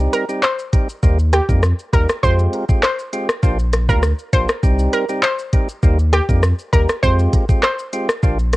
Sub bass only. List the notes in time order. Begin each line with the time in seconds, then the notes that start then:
1.03 D#2
1.49 F2
1.93 D#2
2.23 F2
3.43 A#1
3.89 D2
4.33 A#1
4.63 C2
5.83 D#2
6.29 F2
6.73 D#2
7.03 F2
8.23 A#1